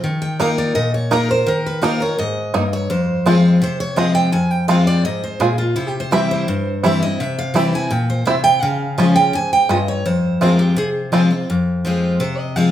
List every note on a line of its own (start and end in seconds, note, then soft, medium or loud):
0.04 0.72 D#3 medium
0.22 0.40 G5 medium
0.39 0.74 A#3 medium
0.39 0.48 A#3 medium
0.39 0.48 D#4 medium
0.39 0.74 D#4 medium
0.39 0.74 F4 medium
0.39 0.75 A#4 loud
0.39 0.57 F5 medium
0.58 0.75 D5 medium
0.75 1.43 A#2 medium
0.75 0.93 D#5 medium
0.94 1.11 C#5 medium
1.11 1.29 A#3 medium
1.11 1.19 A#3 medium
1.11 1.29 D#4 medium
1.11 1.19 D#4 medium
1.11 1.29 F4 medium
1.11 1.28 A#4 medium
1.11 1.30 A#4 medium
1.29 1.47 F4 medium
1.29 1.46 A#4 medium
1.29 1.47 C5 loud
1.46 2.15 D#3 medium
1.46 1.65 A#4 medium
1.66 1.83 B4 medium
1.82 2.00 A#3 medium
1.82 1.91 A#3 medium
1.82 2.00 D#4 loud
1.82 1.91 D#4 medium
1.82 2.00 F4 loud
1.82 1.99 A#4 loud
1.82 2.01 C5 medium
2.00 2.18 F4 soft
2.00 2.17 A#4 medium
2.00 2.18 C#5 medium
2.18 2.52 G#2 medium
2.18 2.69 D#5 medium
2.54 2.88 G2 medium
2.54 2.62 A#3 medium
2.54 2.62 D#4 medium
2.73 2.90 C#5 loud
2.90 3.58 F2 loud
2.90 3.41 C5 medium
3.26 3.60 F3 medium
3.26 3.34 G#3 medium
3.26 3.60 G#3 medium
3.26 3.34 C4 medium
3.26 3.60 C4 loud
3.26 3.35 F4 medium
3.26 3.60 F4 loud
3.62 4.30 C3 medium
3.62 3.80 C5 medium
3.80 3.97 C#5 loud
3.96 4.31 F3 medium
3.96 4.31 G#3 medium
3.96 4.05 G#3 medium
3.96 4.31 C4 medium
3.96 4.05 C4 medium
3.96 4.06 F4 medium
3.96 4.32 F4 medium
3.96 4.14 D#5 medium
4.15 4.32 G5 loud
4.32 5.01 F2 medium
4.32 4.51 G#5 loud
4.51 4.68 G5 loud
4.68 5.03 F3 medium
4.68 4.77 G#3 medium
4.68 5.03 G#3 medium
4.68 4.77 C4 medium
4.68 5.03 C4 medium
4.68 4.77 F4 medium
4.68 5.04 F4 loud
4.68 4.86 F5 medium
4.87 5.04 D5 loud
5.05 5.39 G#2 loud
5.05 5.22 D#5 loud
5.24 5.40 C5 medium
5.40 5.74 A#2 medium
5.40 5.48 G#3 medium
5.40 5.49 C4 medium
5.40 5.49 F4 medium
5.40 5.58 G#4 medium
5.58 5.75 F4 medium
5.76 6.44 C3 medium
5.76 5.87 E4 medium
5.87 5.99 G4 medium
6.00 6.11 C5 medium
6.11 6.45 E3 medium
6.11 6.46 G3 medium
6.11 6.20 C4 medium
6.11 6.46 C4 medium
6.11 6.21 E4 medium
6.11 6.47 E4 loud
6.11 6.30 E5 loud
6.31 6.80 C5 medium
6.48 7.16 G2 loud
6.83 7.01 E3 medium
6.83 7.02 G3 medium
6.83 6.92 C4 medium
6.83 7.02 C4 medium
6.83 6.92 E4 medium
6.83 7.01 E4 loud
7.02 7.19 C4 soft
7.02 7.18 E4 medium
7.02 7.20 D#5 loud
7.20 7.88 C3 medium
7.20 7.38 E5 medium
7.39 7.56 F5 loud
7.54 7.72 E3 loud
7.54 7.72 G3 medium
7.54 7.63 C4 medium
7.54 7.73 C4 loud
7.54 7.63 E4 medium
7.54 7.72 E4 medium
7.54 7.73 G5 medium
7.73 7.90 C4 medium
7.73 7.90 E4 medium
7.73 7.91 G#5 loud
7.90 8.25 A#2 medium
7.90 8.09 G5 medium
8.10 8.26 C5 medium
8.26 8.60 C3 medium
8.26 8.35 C4 medium
8.26 8.35 E4 medium
8.26 8.43 E5 medium
8.44 8.62 G5 loud
8.62 9.30 C#3 loud
8.62 9.15 F5 loud
8.98 9.15 F3 medium
8.98 9.06 G#3 medium
8.98 9.16 G#3 loud
8.98 9.06 C#4 medium
8.98 9.16 C#4 medium
8.98 9.07 F4 medium
8.98 9.14 F4 loud
9.15 9.34 C#4 medium
9.15 9.32 F4 medium
9.15 9.33 G5 loud
9.33 9.67 G#2 medium
9.33 9.52 G#5 loud
9.53 9.69 G5 loud
9.69 10.03 G2 medium
9.69 9.77 G#3 medium
9.69 9.78 C#4 medium
9.69 9.78 F4 medium
9.69 9.88 D#5 medium
9.88 10.06 C#5 medium
10.06 10.73 F2 loud
10.06 10.41 C5 medium
10.41 10.75 F3 medium
10.41 10.49 G#3 medium
10.41 10.75 G#3 medium
10.41 10.49 C4 medium
10.41 10.76 C4 medium
10.41 10.49 F4 medium
10.41 10.76 F4 loud
10.41 10.59 A#4 medium
10.59 10.76 G4 medium
10.76 11.45 C3 medium
10.76 10.89 G#4 medium
11.12 11.30 F3 medium
11.12 11.30 G#3 medium
11.12 11.21 G#3 medium
11.12 11.30 C4 medium
11.12 11.21 C4 medium
11.12 11.29 F4 medium
11.12 11.21 F4 medium
11.31 11.48 C4 soft
11.31 11.47 F4 medium
11.50 12.17 F2 medium
11.85 12.18 F3 medium
11.85 12.19 G#3 medium
11.85 12.19 C4 medium
11.85 12.19 F4 medium
12.20 12.71 C3 loud
12.20 12.39 C5 medium
12.39 12.56 D#5 medium
12.56 12.71 F3 medium
12.56 12.71 G#3 medium
12.56 12.71 C4 medium
12.56 12.71 F4 loud
12.56 12.71 F5 medium